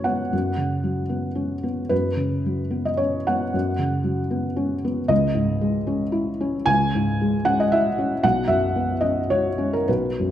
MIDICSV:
0, 0, Header, 1, 2, 480
1, 0, Start_track
1, 0, Tempo, 537634
1, 288, Time_signature, 3, 2, 24, 8
1, 3160, Tempo, 522193
1, 7960, Tempo, 561272
1, 9287, End_track
2, 0, Start_track
2, 0, Title_t, "Felt piano"
2, 0, Program_c, 0, 0
2, 0, Control_c, 0, 64, 127
2, 0, Note_on_c, 0, 42, 47
2, 0, Note_on_c, 0, 49, 36
2, 0, Note_on_c, 0, 54, 38
2, 0, Note_on_c, 0, 59, 37
2, 0, Note_on_c, 0, 61, 43
2, 0, Note_on_c, 0, 71, 66
2, 0, Note_on_c, 0, 73, 70
2, 37, Note_on_c, 0, 78, 73
2, 43, Note_off_c, 0, 59, 0
2, 43, Note_on_c, 0, 59, 44
2, 185, Note_off_c, 0, 61, 0
2, 255, Note_off_c, 0, 42, 0
2, 290, Note_on_c, 0, 42, 51
2, 307, Control_c, 0, 64, 0
2, 309, Note_off_c, 0, 49, 0
2, 311, Note_off_c, 0, 71, 0
2, 311, Note_off_c, 0, 73, 0
2, 313, Note_off_c, 0, 54, 0
2, 433, Note_off_c, 0, 59, 0
2, 455, Control_c, 0, 64, 127
2, 510, Note_on_c, 0, 49, 38
2, 747, Note_on_c, 0, 54, 41
2, 895, Note_off_c, 0, 49, 0
2, 976, Note_on_c, 0, 59, 40
2, 1131, Note_off_c, 0, 54, 0
2, 1208, Note_on_c, 0, 61, 44
2, 1363, Note_off_c, 0, 59, 0
2, 1458, Note_on_c, 0, 59, 44
2, 1466, Note_off_c, 0, 78, 0
2, 1598, Note_off_c, 0, 61, 0
2, 1671, Note_off_c, 0, 42, 0
2, 1691, Note_on_c, 0, 71, 75
2, 1697, Note_on_c, 0, 42, 54
2, 1720, Control_c, 0, 64, 0
2, 1844, Note_off_c, 0, 59, 0
2, 1873, Control_c, 0, 64, 127
2, 1932, Note_on_c, 0, 49, 40
2, 2194, Note_on_c, 0, 54, 40
2, 2321, Note_off_c, 0, 49, 0
2, 2416, Note_on_c, 0, 59, 41
2, 2540, Note_off_c, 0, 71, 0
2, 2548, Note_on_c, 0, 75, 66
2, 2578, Note_off_c, 0, 54, 0
2, 2655, Note_on_c, 0, 73, 76
2, 2660, Note_on_c, 0, 61, 47
2, 2674, Note_off_c, 0, 75, 0
2, 2821, Note_off_c, 0, 59, 0
2, 2913, Note_off_c, 0, 73, 0
2, 2919, Note_on_c, 0, 78, 83
2, 2932, Note_on_c, 0, 59, 46
2, 3059, Note_off_c, 0, 61, 0
2, 3120, Note_off_c, 0, 42, 0
2, 3157, Note_on_c, 0, 42, 55
2, 3175, Control_c, 0, 64, 0
2, 3309, Note_off_c, 0, 59, 0
2, 3349, Control_c, 0, 64, 127
2, 3387, Note_on_c, 0, 49, 45
2, 3619, Note_on_c, 0, 54, 45
2, 3776, Note_off_c, 0, 49, 0
2, 3864, Note_on_c, 0, 59, 45
2, 4013, Note_off_c, 0, 54, 0
2, 4102, Note_on_c, 0, 61, 49
2, 4256, Note_off_c, 0, 59, 0
2, 4358, Note_off_c, 0, 78, 0
2, 4360, Note_on_c, 0, 59, 53
2, 4494, Note_off_c, 0, 61, 0
2, 4560, Note_off_c, 0, 42, 0
2, 4579, Note_on_c, 0, 75, 96
2, 4583, Note_on_c, 0, 37, 67
2, 4598, Note_off_c, 0, 59, 0
2, 4616, Control_c, 0, 64, 0
2, 4737, Control_c, 0, 64, 127
2, 4818, Note_on_c, 0, 44, 51
2, 5066, Note_on_c, 0, 56, 48
2, 5207, Note_off_c, 0, 44, 0
2, 5301, Note_on_c, 0, 61, 51
2, 5448, Note_off_c, 0, 56, 0
2, 5532, Note_on_c, 0, 64, 57
2, 5689, Note_off_c, 0, 61, 0
2, 5795, Note_on_c, 0, 61, 53
2, 5938, Note_off_c, 0, 64, 0
2, 6001, Note_off_c, 0, 37, 0
2, 6024, Note_on_c, 0, 80, 105
2, 6035, Note_on_c, 0, 37, 68
2, 6036, Note_off_c, 0, 75, 0
2, 6062, Control_c, 0, 64, 0
2, 6193, Note_off_c, 0, 61, 0
2, 6224, Control_c, 0, 64, 127
2, 6294, Note_on_c, 0, 44, 50
2, 6536, Note_on_c, 0, 56, 51
2, 6673, Note_off_c, 0, 44, 0
2, 6755, Note_off_c, 0, 80, 0
2, 6755, Note_on_c, 0, 78, 95
2, 6757, Note_on_c, 0, 61, 51
2, 6879, Note_off_c, 0, 78, 0
2, 6891, Note_on_c, 0, 75, 81
2, 6912, Note_off_c, 0, 56, 0
2, 7002, Note_on_c, 0, 76, 96
2, 7006, Note_off_c, 0, 75, 0
2, 7009, Note_on_c, 0, 64, 55
2, 7139, Note_off_c, 0, 61, 0
2, 7245, Note_on_c, 0, 61, 53
2, 7386, Note_off_c, 0, 64, 0
2, 7436, Note_off_c, 0, 37, 0
2, 7476, Note_on_c, 0, 78, 100
2, 7478, Note_off_c, 0, 76, 0
2, 7479, Note_on_c, 0, 35, 66
2, 7481, Note_off_c, 0, 61, 0
2, 7494, Control_c, 0, 64, 0
2, 7641, Control_c, 0, 64, 127
2, 7697, Note_on_c, 0, 76, 90
2, 7699, Note_on_c, 0, 42, 51
2, 7718, Note_off_c, 0, 78, 0
2, 7956, Note_on_c, 0, 59, 47
2, 8087, Note_off_c, 0, 42, 0
2, 8170, Note_on_c, 0, 75, 78
2, 8179, Note_off_c, 0, 76, 0
2, 8179, Note_on_c, 0, 61, 46
2, 8327, Note_off_c, 0, 59, 0
2, 8414, Note_off_c, 0, 75, 0
2, 8423, Note_on_c, 0, 73, 84
2, 8435, Note_on_c, 0, 66, 52
2, 8562, Note_off_c, 0, 61, 0
2, 8660, Note_on_c, 0, 61, 48
2, 8784, Note_off_c, 0, 73, 0
2, 8791, Note_on_c, 0, 70, 67
2, 8815, Note_off_c, 0, 66, 0
2, 8875, Note_off_c, 0, 35, 0
2, 8912, Note_off_c, 0, 70, 0
2, 8916, Note_on_c, 0, 71, 72
2, 8921, Note_on_c, 0, 35, 59
2, 8927, Control_c, 0, 64, 0
2, 9056, Note_off_c, 0, 61, 0
2, 9093, Control_c, 0, 64, 127
2, 9185, Note_on_c, 0, 42, 44
2, 9287, Note_off_c, 0, 35, 0
2, 9287, Note_off_c, 0, 42, 0
2, 9287, Note_off_c, 0, 71, 0
2, 9287, End_track
0, 0, End_of_file